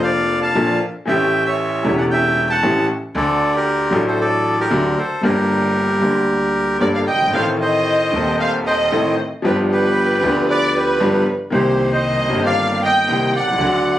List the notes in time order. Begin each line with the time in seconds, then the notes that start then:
Already playing: F1 F2 F3 A#3 D4 A4
0.02 D5 F5
0.42 F5 A5
0.55 A#1 A#2 F3 A#3 D4 A4
1.05 A1 A2 E3 A3 C#4 G4 E5 G5
1.46 C#5 E5
1.83 E1 E2 E3 A3 C#4 G4
1.98 D5 F#5
2.10 E5 G5
2.50 F#5 A5
2.62 A1 A2 E3 A3 C#4 G4
3.15 D2 D3 D4 A4 D5
3.55 G4 A#4
3.91 A1 A2 F#3 A3 D4 A4
4.08 A4 C5
4.20 A4 D5
4.60 G4 A#4
4.71 D2 D3 F#3 A3 D4 A4
4.98 A4 C5
5.21 G1 G2 G3 A#3 D4 G4 A#4
5.25 A#4
5.99 D2 D3 G3 A#3 D4
6.03 A#4
6.80 G1 G2 G3 A#3 D4 A4 A#4 D5
6.95 D5 F5
7.07 D#5 G5
7.14 F#1
7.21 G1
7.27 G#1
7.32 A1 A2 D#3 A3 C4 A4 C5 F5
7.60 C5 D#5
8.11 D#1 D#2 D#3 A3 C4
8.15 A4
8.40 C5 F5
8.66 C5 D#5
8.92 A1 A2 D#3 A3 C4 A4
9.42 G1 G2 F3 B3 D4 G4 B4
9.71 G4 B4
10.21 D2 D3 F3 B3 D4
10.25 G4
10.50 B4 D5
10.76 G4 B4
11.00 G1 G2 F3 B3 D4 G4
11.50 C2 C3 D#3 A#3 C4 G4 C5
11.92 C5 D#5
12.28 G1 G2 D#3 A#3 C4
12.32 G4
12.45 D5 F5
12.84 D#5 G5
13.08 C2 C3 D#3 A#3 C4 G4
13.36 D5 F#5
13.41 B1
13.48 C2
13.54 C#2
13.58 D2 D3 F#3 A3 F#4